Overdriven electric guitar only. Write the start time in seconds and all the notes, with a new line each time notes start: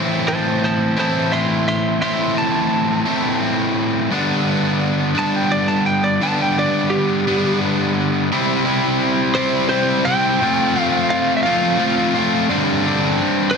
Already playing: A2 E3 A3 C4 E4
0.97 A2 E3 A3 C4 E4
2.02 A2 E3 A3 C4 E4
3.05 A2 E3 A3 C4 E4
4.11 G2 D3 G3 B3 D4
5.15 G2 D3 G3 B3 D4
6.21 G2 D3 G3 B3 D4
7.27 G2 D3 G3 B3 D4
8.32 C3 G3 C4 E4
8.65 G3 C4 E4
9.36 C3 G3 C4 E4
9.69 C3 G3 C4 E4
10.06 G3 C4 E4
10.41 F3 A3 C4 F4
10.75 A3 C4 F4
11.45 F3 A3 C4 F4
11.78 F3 A3 C4 F4
12.15 A3 C4 F4
12.49 G2 D3 G3 C4 D4
12.85 G3 C4 D4
13.52 G2 D3 G3 C4 D4